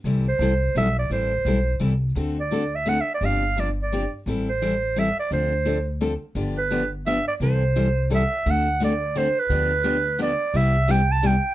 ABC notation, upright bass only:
X:1
M:3/4
L:1/8
Q:"Swing" 1/4=172
K:C
V:1 name="Upright bass" clef=bass
C,,2 C,,2 B,,,2 | A,,,2 B,,,2 C,,2 | D,,6 | G,,,6 |
A,,,6 | D,,6 | G,,,6 | C,,6 |
D,,6 | D,,6 | C,,6 |]